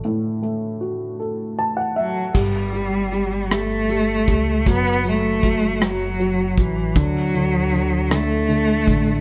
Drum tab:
CC |------|x-----|------|------|
HH |------|-xxxxx|xxxxxx|xxxxxx|
SD |------|---r--|---r--|---r--|
BD |------|o----o|o-o--o|o----o|